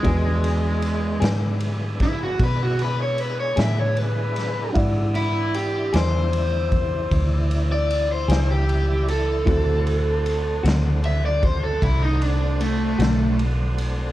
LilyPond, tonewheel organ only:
\new Staff \with { instrumentName = "Tonewheel organ" } { \time 12/8 \key e \dorian \tempo 4. = 51 <gis b d' e'>1. | <e d' e'>1. | <a c' d' fis'>1. | }